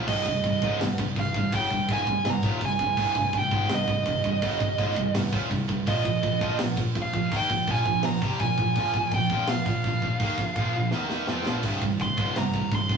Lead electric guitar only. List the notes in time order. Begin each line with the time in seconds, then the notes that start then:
0.08 D#5
1.20 F5
1.55 G5
1.92 G#5
2.30 A#5
2.65 G#5
3.38 G5
3.74 D#5
5.88 D#5
7.02 F5
7.37 G5
7.72 G#5
8.05 A#5
8.40 G#5
9.14 G5
9.49 F5
12.02 C6
12.38 A#5
12.75 C6